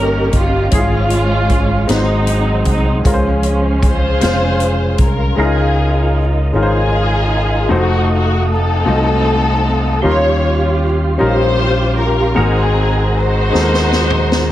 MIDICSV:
0, 0, Header, 1, 7, 480
1, 0, Start_track
1, 0, Key_signature, -5, "major"
1, 0, Tempo, 776800
1, 443, Time_signature, 6, 3, 24, 8
1, 8971, End_track
2, 0, Start_track
2, 0, Title_t, "Tonewheel organ"
2, 0, Program_c, 0, 16
2, 0, Note_on_c, 0, 70, 58
2, 0, Note_on_c, 0, 75, 55
2, 0, Note_on_c, 0, 79, 55
2, 429, Note_off_c, 0, 79, 0
2, 430, Note_off_c, 0, 75, 0
2, 431, Note_off_c, 0, 70, 0
2, 451, Note_on_c, 0, 68, 64
2, 453, Note_on_c, 0, 73, 60
2, 453, Note_on_c, 0, 77, 55
2, 1161, Note_off_c, 0, 73, 0
2, 1161, Note_off_c, 0, 77, 0
2, 1172, Note_on_c, 0, 75, 47
2, 1173, Note_on_c, 0, 78, 48
2, 1175, Note_on_c, 0, 84, 59
2, 1880, Note_off_c, 0, 75, 0
2, 1881, Note_off_c, 0, 78, 0
2, 1893, Note_on_c, 0, 77, 49
2, 1895, Note_on_c, 0, 61, 57
2, 3302, Note_off_c, 0, 68, 0
2, 3307, Note_off_c, 0, 84, 0
2, 3313, Note_off_c, 0, 77, 0
2, 3314, Note_off_c, 0, 61, 0
2, 3327, Note_on_c, 0, 75, 53
2, 3328, Note_on_c, 0, 70, 63
2, 3331, Note_on_c, 0, 77, 52
2, 4750, Note_off_c, 0, 70, 0
2, 4750, Note_off_c, 0, 75, 0
2, 4756, Note_on_c, 0, 78, 56
2, 4757, Note_on_c, 0, 69, 62
2, 4761, Note_on_c, 0, 87, 69
2, 6181, Note_off_c, 0, 77, 0
2, 6184, Note_off_c, 0, 78, 0
2, 6185, Note_off_c, 0, 69, 0
2, 6186, Note_off_c, 0, 87, 0
2, 6189, Note_on_c, 0, 84, 68
2, 6191, Note_on_c, 0, 61, 53
2, 6192, Note_on_c, 0, 77, 58
2, 6195, Note_on_c, 0, 67, 65
2, 7620, Note_off_c, 0, 84, 0
2, 7621, Note_off_c, 0, 61, 0
2, 7621, Note_off_c, 0, 77, 0
2, 7623, Note_off_c, 0, 67, 0
2, 7635, Note_on_c, 0, 68, 65
2, 7637, Note_on_c, 0, 70, 57
2, 7637, Note_on_c, 0, 82, 67
2, 7638, Note_on_c, 0, 78, 57
2, 8971, Note_off_c, 0, 68, 0
2, 8971, Note_off_c, 0, 70, 0
2, 8971, Note_off_c, 0, 78, 0
2, 8971, Note_off_c, 0, 82, 0
2, 8971, End_track
3, 0, Start_track
3, 0, Title_t, "String section"
3, 0, Program_c, 1, 48
3, 0, Note_on_c, 1, 61, 69
3, 0, Note_on_c, 1, 67, 72
3, 0, Note_on_c, 1, 70, 100
3, 188, Note_off_c, 1, 70, 0
3, 222, Note_on_c, 1, 65, 84
3, 423, Note_off_c, 1, 61, 0
3, 423, Note_off_c, 1, 67, 0
3, 452, Note_off_c, 1, 65, 0
3, 455, Note_on_c, 1, 56, 68
3, 456, Note_on_c, 1, 61, 62
3, 464, Note_on_c, 1, 65, 93
3, 1144, Note_off_c, 1, 56, 0
3, 1145, Note_off_c, 1, 61, 0
3, 1149, Note_off_c, 1, 65, 0
3, 1180, Note_on_c, 1, 54, 64
3, 1181, Note_on_c, 1, 60, 67
3, 1185, Note_on_c, 1, 63, 88
3, 1648, Note_off_c, 1, 63, 0
3, 1655, Note_on_c, 1, 63, 77
3, 1867, Note_off_c, 1, 54, 0
3, 1867, Note_off_c, 1, 60, 0
3, 1873, Note_off_c, 1, 63, 0
3, 1896, Note_on_c, 1, 61, 68
3, 1899, Note_on_c, 1, 53, 54
3, 1899, Note_on_c, 1, 56, 54
3, 2376, Note_on_c, 1, 72, 100
3, 2377, Note_on_c, 1, 65, 68
3, 2378, Note_on_c, 1, 68, 69
3, 2826, Note_off_c, 1, 53, 0
3, 2826, Note_off_c, 1, 56, 0
3, 2849, Note_off_c, 1, 61, 0
3, 3065, Note_off_c, 1, 65, 0
3, 3065, Note_off_c, 1, 72, 0
3, 3066, Note_off_c, 1, 68, 0
3, 3104, Note_on_c, 1, 70, 73
3, 3333, Note_off_c, 1, 70, 0
3, 3335, Note_on_c, 1, 68, 74
3, 3340, Note_on_c, 1, 63, 51
3, 3340, Note_on_c, 1, 65, 49
3, 3809, Note_off_c, 1, 68, 0
3, 4026, Note_off_c, 1, 63, 0
3, 4027, Note_off_c, 1, 65, 0
3, 4054, Note_on_c, 1, 63, 58
3, 4054, Note_on_c, 1, 65, 59
3, 4062, Note_on_c, 1, 68, 84
3, 4743, Note_off_c, 1, 63, 0
3, 4743, Note_off_c, 1, 65, 0
3, 4747, Note_off_c, 1, 68, 0
3, 4775, Note_on_c, 1, 57, 55
3, 4778, Note_on_c, 1, 63, 56
3, 4789, Note_on_c, 1, 66, 77
3, 5016, Note_off_c, 1, 66, 0
3, 5030, Note_on_c, 1, 66, 77
3, 5240, Note_off_c, 1, 66, 0
3, 5246, Note_off_c, 1, 63, 0
3, 5251, Note_on_c, 1, 60, 71
3, 5253, Note_on_c, 1, 63, 70
3, 5266, Note_on_c, 1, 69, 97
3, 5463, Note_off_c, 1, 57, 0
3, 6181, Note_off_c, 1, 60, 0
3, 6182, Note_off_c, 1, 63, 0
3, 6189, Note_off_c, 1, 69, 0
3, 6206, Note_on_c, 1, 65, 67
3, 6208, Note_on_c, 1, 67, 68
3, 6222, Note_on_c, 1, 73, 96
3, 6692, Note_off_c, 1, 73, 0
3, 6899, Note_off_c, 1, 65, 0
3, 6900, Note_off_c, 1, 67, 0
3, 6925, Note_on_c, 1, 67, 81
3, 6927, Note_on_c, 1, 65, 74
3, 6932, Note_on_c, 1, 72, 109
3, 7381, Note_off_c, 1, 72, 0
3, 7408, Note_on_c, 1, 70, 90
3, 7618, Note_off_c, 1, 67, 0
3, 7619, Note_off_c, 1, 65, 0
3, 7644, Note_off_c, 1, 70, 0
3, 7649, Note_on_c, 1, 60, 71
3, 7649, Note_on_c, 1, 63, 64
3, 7654, Note_on_c, 1, 68, 83
3, 8114, Note_off_c, 1, 63, 0
3, 8122, Note_on_c, 1, 63, 76
3, 8123, Note_on_c, 1, 66, 68
3, 8127, Note_off_c, 1, 68, 0
3, 8135, Note_on_c, 1, 72, 105
3, 8340, Note_off_c, 1, 60, 0
3, 8971, Note_off_c, 1, 63, 0
3, 8971, Note_off_c, 1, 66, 0
3, 8971, Note_off_c, 1, 72, 0
3, 8971, End_track
4, 0, Start_track
4, 0, Title_t, "Grand piano"
4, 0, Program_c, 2, 0
4, 0, Control_c, 2, 64, 127
4, 0, Note_on_c, 2, 51, 52
4, 0, Note_on_c, 2, 55, 59
4, 0, Note_on_c, 2, 58, 55
4, 0, Note_on_c, 2, 61, 55
4, 0, Note_on_c, 2, 63, 56
4, 0, Note_on_c, 2, 70, 80
4, 0, Note_on_c, 2, 73, 66
4, 213, Note_off_c, 2, 55, 0
4, 217, Note_off_c, 2, 58, 0
4, 219, Note_off_c, 2, 61, 0
4, 222, Note_off_c, 2, 63, 0
4, 223, Note_off_c, 2, 73, 0
4, 439, Note_on_c, 2, 61, 69
4, 448, Note_on_c, 2, 44, 57
4, 449, Note_on_c, 2, 64, 52
4, 450, Control_c, 2, 64, 0
4, 452, Note_off_c, 2, 51, 0
4, 454, Note_off_c, 2, 70, 0
4, 459, Note_on_c, 2, 68, 76
4, 486, Note_off_c, 2, 64, 0
4, 490, Note_on_c, 2, 65, 66
4, 544, Control_c, 2, 64, 127
4, 935, Note_off_c, 2, 61, 0
4, 945, Note_off_c, 2, 68, 0
4, 960, Note_off_c, 2, 65, 0
4, 1141, Note_off_c, 2, 44, 0
4, 1156, Note_on_c, 2, 56, 65
4, 1160, Note_on_c, 2, 60, 55
4, 1165, Note_on_c, 2, 63, 55
4, 1166, Note_on_c, 2, 44, 60
4, 1168, Note_on_c, 2, 66, 55
4, 1171, Control_c, 2, 64, 0
4, 1174, Note_on_c, 2, 71, 55
4, 1208, Note_off_c, 2, 71, 0
4, 1213, Note_on_c, 2, 72, 67
4, 1276, Control_c, 2, 64, 127
4, 1654, Note_off_c, 2, 56, 0
4, 1655, Note_off_c, 2, 60, 0
4, 1658, Note_off_c, 2, 63, 0
4, 1659, Note_off_c, 2, 66, 0
4, 1682, Note_off_c, 2, 72, 0
4, 1860, Note_off_c, 2, 44, 0
4, 1880, Note_on_c, 2, 56, 66
4, 1890, Note_on_c, 2, 61, 55
4, 1891, Control_c, 2, 64, 0
4, 1892, Note_on_c, 2, 49, 55
4, 1893, Note_on_c, 2, 65, 62
4, 1899, Note_on_c, 2, 70, 58
4, 1931, Note_off_c, 2, 70, 0
4, 1938, Note_on_c, 2, 72, 74
4, 2005, Control_c, 2, 64, 127
4, 2376, Note_off_c, 2, 56, 0
4, 2381, Note_off_c, 2, 61, 0
4, 2382, Note_off_c, 2, 65, 0
4, 2405, Note_off_c, 2, 72, 0
4, 2583, Note_off_c, 2, 49, 0
4, 2598, Note_on_c, 2, 56, 74
4, 2603, Note_on_c, 2, 72, 60
4, 2605, Note_on_c, 2, 61, 58
4, 2614, Note_on_c, 2, 65, 62
4, 2617, Note_on_c, 2, 77, 80
4, 3094, Note_off_c, 2, 56, 0
4, 3097, Note_off_c, 2, 72, 0
4, 3098, Note_off_c, 2, 61, 0
4, 3102, Note_off_c, 2, 65, 0
4, 3104, Note_off_c, 2, 77, 0
4, 3313, Note_on_c, 2, 56, 67
4, 3320, Note_on_c, 2, 61, 64
4, 3323, Note_on_c, 2, 49, 57
4, 3324, Note_on_c, 2, 63, 67
4, 3327, Note_on_c, 2, 64, 52
4, 3330, Control_c, 2, 64, 0
4, 3333, Note_on_c, 2, 70, 78
4, 3365, Note_off_c, 2, 64, 0
4, 3370, Note_on_c, 2, 65, 62
4, 3427, Control_c, 2, 64, 127
4, 3812, Note_off_c, 2, 56, 0
4, 3815, Note_off_c, 2, 61, 0
4, 3817, Note_off_c, 2, 63, 0
4, 3822, Note_off_c, 2, 70, 0
4, 3840, Note_off_c, 2, 65, 0
4, 4018, Note_off_c, 2, 49, 0
4, 4035, Note_on_c, 2, 56, 57
4, 4043, Note_on_c, 2, 61, 57
4, 4047, Note_on_c, 2, 63, 56
4, 4050, Note_on_c, 2, 65, 58
4, 4056, Note_on_c, 2, 70, 58
4, 4089, Note_off_c, 2, 70, 0
4, 4095, Note_on_c, 2, 72, 67
4, 4532, Note_off_c, 2, 56, 0
4, 4536, Note_off_c, 2, 61, 0
4, 4539, Note_off_c, 2, 63, 0
4, 4540, Note_off_c, 2, 65, 0
4, 4562, Note_off_c, 2, 72, 0
4, 4751, Note_on_c, 2, 57, 69
4, 4756, Note_on_c, 2, 63, 60
4, 4762, Note_on_c, 2, 53, 66
4, 4762, Note_on_c, 2, 66, 67
4, 4766, Note_on_c, 2, 72, 74
4, 4771, Control_c, 2, 64, 0
4, 4876, Control_c, 2, 64, 127
4, 5250, Note_off_c, 2, 57, 0
4, 5253, Note_off_c, 2, 63, 0
4, 5256, Note_off_c, 2, 53, 0
4, 5256, Note_off_c, 2, 66, 0
4, 5258, Note_off_c, 2, 72, 0
4, 5472, Note_on_c, 2, 57, 65
4, 5478, Note_on_c, 2, 63, 61
4, 5481, Note_on_c, 2, 65, 55
4, 5484, Note_on_c, 2, 66, 58
4, 5491, Note_on_c, 2, 75, 73
4, 5971, Note_off_c, 2, 57, 0
4, 5974, Note_off_c, 2, 63, 0
4, 5975, Note_off_c, 2, 65, 0
4, 5977, Note_off_c, 2, 66, 0
4, 5980, Note_off_c, 2, 75, 0
4, 6193, Note_on_c, 2, 55, 74
4, 6196, Note_on_c, 2, 61, 65
4, 6202, Note_on_c, 2, 51, 54
4, 6202, Note_on_c, 2, 63, 63
4, 6206, Note_on_c, 2, 65, 70
4, 6210, Control_c, 2, 64, 0
4, 6213, Note_on_c, 2, 70, 64
4, 6247, Note_off_c, 2, 70, 0
4, 6249, Note_on_c, 2, 84, 78
4, 6329, Control_c, 2, 64, 127
4, 6691, Note_off_c, 2, 55, 0
4, 6693, Note_off_c, 2, 61, 0
4, 6696, Note_off_c, 2, 63, 0
4, 6697, Note_off_c, 2, 65, 0
4, 6719, Note_off_c, 2, 84, 0
4, 6897, Note_off_c, 2, 51, 0
4, 6905, Note_on_c, 2, 55, 62
4, 6908, Note_on_c, 2, 61, 64
4, 6914, Note_on_c, 2, 63, 66
4, 6920, Note_on_c, 2, 65, 64
4, 6925, Note_on_c, 2, 70, 73
4, 7407, Note_off_c, 2, 55, 0
4, 7408, Note_off_c, 2, 61, 0
4, 7411, Note_off_c, 2, 63, 0
4, 7414, Note_off_c, 2, 65, 0
4, 7417, Note_off_c, 2, 70, 0
4, 7629, Note_on_c, 2, 56, 72
4, 7631, Note_on_c, 2, 58, 57
4, 7636, Note_on_c, 2, 44, 61
4, 7636, Note_on_c, 2, 63, 62
4, 7644, Note_on_c, 2, 66, 67
4, 7645, Note_on_c, 2, 70, 84
4, 7650, Control_c, 2, 64, 0
4, 7673, Note_on_c, 2, 60, 66
4, 7675, Note_off_c, 2, 58, 0
4, 7762, Control_c, 2, 64, 127
4, 8128, Note_off_c, 2, 56, 0
4, 8132, Note_off_c, 2, 63, 0
4, 8136, Note_off_c, 2, 66, 0
4, 8137, Note_off_c, 2, 70, 0
4, 8151, Note_off_c, 2, 60, 0
4, 8333, Note_off_c, 2, 44, 0
4, 8349, Note_on_c, 2, 56, 62
4, 8355, Note_on_c, 2, 60, 58
4, 8357, Note_on_c, 2, 63, 56
4, 8362, Note_on_c, 2, 66, 54
4, 8369, Note_on_c, 2, 69, 57
4, 8404, Note_off_c, 2, 69, 0
4, 8407, Note_on_c, 2, 70, 69
4, 8848, Note_off_c, 2, 56, 0
4, 8851, Note_off_c, 2, 60, 0
4, 8852, Note_off_c, 2, 63, 0
4, 8855, Note_off_c, 2, 66, 0
4, 8877, Note_off_c, 2, 70, 0
4, 8971, End_track
5, 0, Start_track
5, 0, Title_t, "French horn section"
5, 0, Program_c, 3, 60
5, 0, Note_on_c, 3, 49, 66
5, 0, Note_on_c, 3, 55, 65
5, 0, Note_on_c, 3, 58, 59
5, 0, Note_on_c, 3, 63, 70
5, 417, Note_off_c, 3, 49, 0
5, 430, Note_off_c, 3, 58, 0
5, 431, Note_off_c, 3, 55, 0
5, 431, Note_off_c, 3, 63, 0
5, 452, Note_on_c, 3, 53, 68
5, 454, Note_on_c, 3, 56, 60
5, 455, Note_on_c, 3, 61, 59
5, 455, Note_on_c, 3, 65, 69
5, 1161, Note_off_c, 3, 53, 0
5, 1162, Note_off_c, 3, 61, 0
5, 1162, Note_off_c, 3, 65, 0
5, 1175, Note_on_c, 3, 60, 58
5, 1176, Note_on_c, 3, 63, 67
5, 1179, Note_on_c, 3, 54, 60
5, 1879, Note_on_c, 3, 53, 60
5, 1881, Note_on_c, 3, 61, 64
5, 1882, Note_off_c, 3, 60, 0
5, 1882, Note_off_c, 3, 63, 0
5, 1883, Note_on_c, 3, 72, 58
5, 1884, Note_off_c, 3, 54, 0
5, 3303, Note_off_c, 3, 56, 0
5, 3307, Note_off_c, 3, 53, 0
5, 3307, Note_off_c, 3, 61, 0
5, 3308, Note_off_c, 3, 72, 0
5, 8971, End_track
6, 0, Start_track
6, 0, Title_t, "Fingered electric bass"
6, 0, Program_c, 4, 33
6, 0, Note_on_c, 4, 31, 78
6, 180, Note_off_c, 4, 31, 0
6, 205, Note_on_c, 4, 31, 80
6, 425, Note_off_c, 4, 31, 0
6, 448, Note_on_c, 4, 32, 100
6, 1141, Note_off_c, 4, 32, 0
6, 1164, Note_on_c, 4, 32, 76
6, 1619, Note_off_c, 4, 32, 0
6, 1643, Note_on_c, 4, 36, 80
6, 1864, Note_off_c, 4, 36, 0
6, 1885, Note_on_c, 4, 37, 95
6, 2605, Note_on_c, 4, 29, 69
6, 2614, Note_off_c, 4, 37, 0
6, 3059, Note_off_c, 4, 29, 0
6, 3083, Note_on_c, 4, 36, 68
6, 3304, Note_off_c, 4, 36, 0
6, 3320, Note_on_c, 4, 37, 95
6, 4016, Note_off_c, 4, 37, 0
6, 4038, Note_on_c, 4, 32, 70
6, 4735, Note_off_c, 4, 32, 0
6, 4761, Note_on_c, 4, 29, 89
6, 5456, Note_off_c, 4, 29, 0
6, 5480, Note_on_c, 4, 36, 80
6, 6176, Note_off_c, 4, 36, 0
6, 6204, Note_on_c, 4, 39, 103
6, 6898, Note_off_c, 4, 39, 0
6, 6925, Note_on_c, 4, 34, 82
6, 7618, Note_off_c, 4, 34, 0
6, 7645, Note_on_c, 4, 32, 105
6, 8338, Note_off_c, 4, 32, 0
6, 8364, Note_on_c, 4, 39, 78
6, 8971, Note_off_c, 4, 39, 0
6, 8971, End_track
7, 0, Start_track
7, 0, Title_t, "Drums"
7, 201, Note_on_c, 9, 42, 49
7, 204, Note_on_c, 9, 36, 75
7, 263, Note_off_c, 9, 42, 0
7, 266, Note_off_c, 9, 36, 0
7, 441, Note_on_c, 9, 42, 79
7, 445, Note_on_c, 9, 36, 95
7, 503, Note_off_c, 9, 42, 0
7, 507, Note_off_c, 9, 36, 0
7, 681, Note_on_c, 9, 42, 47
7, 742, Note_off_c, 9, 42, 0
7, 924, Note_on_c, 9, 42, 42
7, 926, Note_on_c, 9, 36, 73
7, 985, Note_off_c, 9, 42, 0
7, 987, Note_off_c, 9, 36, 0
7, 1166, Note_on_c, 9, 42, 70
7, 1177, Note_on_c, 9, 38, 96
7, 1228, Note_off_c, 9, 42, 0
7, 1238, Note_off_c, 9, 38, 0
7, 1402, Note_on_c, 9, 42, 49
7, 1464, Note_off_c, 9, 42, 0
7, 1638, Note_on_c, 9, 42, 44
7, 1644, Note_on_c, 9, 36, 70
7, 1700, Note_off_c, 9, 42, 0
7, 1706, Note_off_c, 9, 36, 0
7, 1885, Note_on_c, 9, 36, 98
7, 1886, Note_on_c, 9, 42, 74
7, 1947, Note_off_c, 9, 36, 0
7, 1948, Note_off_c, 9, 42, 0
7, 2120, Note_on_c, 9, 42, 44
7, 2182, Note_off_c, 9, 42, 0
7, 2364, Note_on_c, 9, 36, 78
7, 2364, Note_on_c, 9, 42, 47
7, 2425, Note_off_c, 9, 36, 0
7, 2426, Note_off_c, 9, 42, 0
7, 2602, Note_on_c, 9, 42, 68
7, 2613, Note_on_c, 9, 38, 100
7, 2664, Note_off_c, 9, 42, 0
7, 2675, Note_off_c, 9, 38, 0
7, 2842, Note_on_c, 9, 42, 45
7, 2904, Note_off_c, 9, 42, 0
7, 3078, Note_on_c, 9, 42, 47
7, 3081, Note_on_c, 9, 36, 83
7, 3140, Note_off_c, 9, 42, 0
7, 3143, Note_off_c, 9, 36, 0
7, 8369, Note_on_c, 9, 38, 54
7, 8430, Note_off_c, 9, 38, 0
7, 8489, Note_on_c, 9, 38, 47
7, 8551, Note_off_c, 9, 38, 0
7, 8604, Note_on_c, 9, 38, 69
7, 8666, Note_off_c, 9, 38, 0
7, 8715, Note_on_c, 9, 45, 66
7, 8777, Note_off_c, 9, 45, 0
7, 8847, Note_on_c, 9, 38, 83
7, 8909, Note_off_c, 9, 38, 0
7, 8971, End_track
0, 0, End_of_file